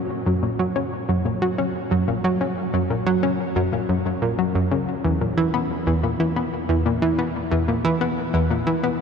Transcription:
0.26 0.42 F#2 loud
0.43 0.54 A#2 medium
0.59 0.75 F#3 medium
0.76 0.87 C#4 medium
1.09 1.24 F#2 loud
1.25 1.36 A#2 medium
1.42 1.57 F#3 loud
1.58 1.69 C#4 medium
1.91 2.07 F#2 loud
2.08 2.19 A#2 medium
2.24 2.40 F#3 loud
2.41 2.52 C#4 medium
2.74 2.89 F#2 loud
2.90 3.01 A#2 medium
3.07 3.22 F#3 loud
3.23 3.34 C#4 medium
3.56 3.72 F#2 loud
3.72 3.84 A#2 medium
3.89 4.04 F#2 loud
4.06 4.17 F#2 medium
4.22 4.33 A#2 medium
4.39 4.50 F#3 medium
4.55 4.66 F#2 loud
4.72 4.87 C#3 medium
5.04 5.20 E2 loud
5.21 5.32 A#2 medium
5.37 5.53 E3 loud
5.54 5.65 B3 medium
5.87 6.02 E2 loud
6.03 6.15 A#2 medium
6.20 6.35 E3 loud
6.36 6.48 B3 medium
6.69 6.85 E2 loud
6.86 6.97 A#2 medium
7.02 7.18 E3 medium
7.19 7.30 B3 medium
7.52 7.67 E2 loud
7.68 7.79 A#2 medium
7.85 8.00 E3 loud
8.01 8.12 B3 medium
8.34 8.50 E2 loud
8.50 8.62 A#2 medium
8.67 8.83 E3 loud
8.83 8.95 B3 medium

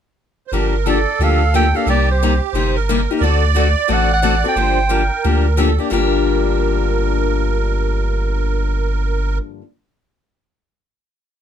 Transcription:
0.47 0.52 C5 medium
0.52 1.06 G1 medium
0.52 0.73 D3 medium
0.52 0.74 F3 medium
0.52 0.74 A#3 medium
0.52 0.74 D4 medium
0.52 0.74 G4 medium
0.52 0.87 A#4 medium
0.85 0.97 D3 medium
0.85 0.97 F3 medium
0.85 0.97 A#3 medium
0.85 0.98 D4 medium
0.85 0.97 G4 medium
0.85 1.89 A4 medium
0.85 1.25 D5 medium
1.19 1.73 D2 medium
1.19 1.41 D3 medium
1.19 1.41 F3 medium
1.19 1.41 A#3 medium
1.19 1.42 D4 medium
1.19 1.41 G4 medium
1.23 1.55 F5 medium
1.54 1.65 D3 medium
1.54 1.65 F3 medium
1.54 1.65 A#3 medium
1.54 1.65 D4 medium
1.54 1.65 G4 medium
1.54 1.78 G5 medium
1.75 1.87 A#3 soft
1.75 1.87 D4 soft
1.75 1.87 G4 soft
1.75 1.88 F5 medium
1.84 2.40 C2 medium
1.84 2.08 C3 medium
1.84 2.08 G3 medium
1.84 2.08 A#3 medium
1.84 2.08 D#4 medium
1.84 2.55 G4 medium
1.89 2.09 G4 medium
1.89 2.08 D5 medium
2.11 2.41 C5 medium
2.23 2.33 C3 medium
2.23 2.33 G3 medium
2.23 2.33 A#3 medium
2.23 2.33 D#4 medium
2.23 2.33 G4 medium
2.53 3.07 G1 medium
2.53 2.76 C3 medium
2.53 2.75 G3 medium
2.53 2.76 A#3 medium
2.53 2.76 D#4 medium
2.53 2.76 G4 medium
2.53 2.75 C5 medium
2.74 3.23 A#4 medium
2.89 3.00 C3 medium
2.89 3.00 G3 medium
2.89 3.00 A#3 medium
2.89 3.00 D#4 medium
2.89 3.00 G4 medium
3.11 3.23 A#3 soft
3.11 3.22 D#4 soft
3.11 3.22 G4 medium
3.21 3.75 D2 medium
3.21 3.43 D3 medium
3.21 3.43 A3 medium
3.21 3.43 C4 medium
3.21 3.43 F#4 medium
3.21 3.43 A4 medium
3.21 4.20 D5 loud
3.55 3.66 D3 medium
3.55 3.66 A3 medium
3.55 3.67 C4 medium
3.55 3.67 F#4 medium
3.55 3.67 A4 medium
3.59 3.94 D5 medium
3.88 4.43 A1 medium
3.88 4.09 D3 medium
3.88 4.09 A3 medium
3.88 4.10 C4 medium
3.88 4.10 F#4 medium
3.88 4.10 A4 medium
3.93 4.12 F#5 medium
4.13 4.43 F#5 medium
4.22 4.34 D3 medium
4.22 4.34 A3 medium
4.22 4.34 C4 medium
4.22 4.34 F#4 medium
4.22 4.34 A4 medium
4.22 4.57 D5 medium
4.44 4.56 C4 soft
4.44 4.56 F#4 soft
4.44 4.56 A4 medium
4.48 5.56 G5 medium
4.56 5.10 G1 medium
4.56 4.78 D3 medium
4.56 4.77 F3 medium
4.56 4.77 A#3 medium
4.56 4.78 D4 medium
4.56 4.78 G4 medium
4.56 4.91 C5 medium
4.89 5.01 D3 medium
4.89 5.01 F3 medium
4.89 5.01 A#3 medium
4.89 5.01 D4 medium
4.89 5.01 G4 medium
4.89 5.60 A#4 medium
5.24 5.79 D2 medium
5.24 5.45 D3 medium
5.24 5.45 F3 medium
5.24 5.45 A#3 medium
5.24 5.45 D4 medium
5.24 5.46 G4 medium
5.57 5.69 D3 medium
5.57 5.69 F3 medium
5.57 5.69 A#3 medium
5.57 5.69 D4 medium
5.57 5.69 G4 medium
5.57 5.79 A4 medium
5.78 5.90 A#3 soft
5.78 5.92 D4 soft
5.78 5.90 G4 medium
5.78 5.91 G4 medium
5.90 9.39 G1 medium
5.90 9.61 G2 medium
5.90 9.61 D3 medium
5.90 9.62 F3 medium
5.90 9.62 A#3 medium
5.90 9.63 D4 medium
5.90 9.64 G4 medium
5.90 9.38 A#4 medium

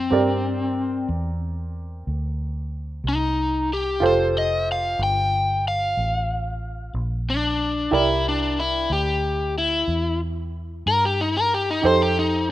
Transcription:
0.00 1.07 C4 medium
0.10 1.06 G2 medium
0.10 3.97 C4 soft
0.10 3.98 G4 soft
0.10 3.98 A#4 soft
0.10 3.99 D5 medium
1.09 2.04 E2 medium
2.07 3.02 D2 medium
3.04 3.99 C2 medium
3.08 3.70 D#4 medium
3.73 4.03 G4 medium
4.00 4.96 F1 medium
4.00 7.88 F4 medium
4.00 7.88 G4 soft
4.00 7.88 A4 soft
4.00 7.89 C5 medium
4.06 4.35 C5 medium
4.38 4.68 D#5 medium
4.72 5.01 F5 medium
4.99 5.94 G1 medium
5.03 5.65 G5 medium
5.68 6.93 F5 medium
5.97 6.92 A1 medium
6.94 7.89 A#1 medium
7.30 7.92 D4 medium
7.91 8.87 C2 medium
7.91 11.79 E4 soft
7.91 11.79 G4 soft
7.91 11.80 A#4 soft
7.91 11.80 D5 medium
7.95 8.25 E4 medium
8.29 8.58 D4 medium
8.60 8.90 E4 medium
8.90 9.85 D2 medium
8.90 9.55 G4 medium
9.58 10.20 E4 medium
9.88 10.83 E2 medium
10.86 11.81 G2 medium
10.86 11.03 A#4 loud
11.05 11.20 G4 medium
11.21 11.35 D#4 medium
11.37 11.52 A#4 medium
11.54 11.68 G4 medium
11.70 11.85 D#4 medium
11.82 12.52 F2 medium
11.82 12.52 D#4 medium
11.82 12.52 G4 soft
11.82 12.52 A4 soft
11.82 12.52 C5 medium
11.86 12.01 C5 medium
12.02 12.17 G4 medium
12.19 12.49 D#4 medium

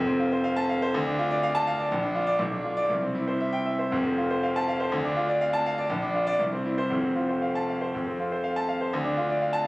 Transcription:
0.00 0.90 F1 medium
0.00 0.91 F2 loud
0.07 0.27 C4 medium
0.20 0.40 F4 medium
0.32 0.52 C5 medium
0.44 0.64 F5 medium
0.56 0.76 A5 loud
0.69 0.89 F5 medium
0.82 0.94 C5 medium
0.94 1.88 D2 loud
1.06 1.25 D4 medium
1.19 1.38 F4 medium
1.31 1.50 D5 medium
1.43 1.62 F5 medium
1.55 1.74 A5 loud
1.67 1.86 F5 loud
1.79 1.91 D5 medium
1.91 2.38 A#1 loud
2.03 2.22 D4 medium
2.15 2.34 F4 medium
2.27 2.39 D5 loud
2.39 2.88 B1 medium
2.52 2.72 D4 medium
2.64 2.84 F4 medium
2.77 2.89 D5 loud
2.89 3.89 C2 medium
3.02 3.22 C4 medium
3.15 3.35 E4 medium
3.27 3.48 C5 medium
3.40 3.61 E5 medium
3.52 3.73 G5 medium
3.66 3.86 E5 medium
3.79 3.92 C5 medium
3.91 4.89 F1 medium
3.91 4.89 F2 medium
4.05 4.25 C4 medium
4.18 4.38 F4 medium
4.30 4.50 C5 medium
4.43 4.63 F5 medium
4.56 4.75 A5 loud
4.68 4.88 F5 medium
4.80 4.92 C5 medium
4.92 5.87 D2 medium
5.04 5.24 D4 medium
5.16 5.36 F4 medium
5.29 5.48 D5 medium
5.41 5.61 F5 medium
5.53 5.73 A5 loud
5.66 5.86 F5 medium
5.78 5.90 D5 medium
5.90 6.38 A#1 loud
6.02 6.22 D4 medium
6.15 6.35 F4 medium
6.27 6.40 D5 loud
6.39 6.89 C2 medium
6.52 6.73 C4 medium
6.65 6.86 E4 medium
6.78 6.91 C5 medium
6.89 7.91 F1 medium
6.89 7.91 F2 medium
7.03 7.24 C4 medium
7.16 7.37 F4 medium
7.29 7.50 C5 medium
7.42 7.63 F5 medium
7.55 7.77 A5 medium
7.69 7.89 F5 medium
7.81 7.94 C5 medium
7.95 8.90 F2 medium
8.07 8.27 C4 medium
8.20 8.40 F4 medium
8.32 8.52 C5 medium
8.44 8.64 F5 medium
8.56 8.76 A5 medium
8.69 8.88 F5 medium
8.81 8.93 C5 medium
8.93 9.67 D2 medium
9.04 9.24 D4 medium
9.17 9.36 F4 medium
9.30 9.49 D5 medium
9.42 9.61 F5 medium
9.53 9.67 A5 loud

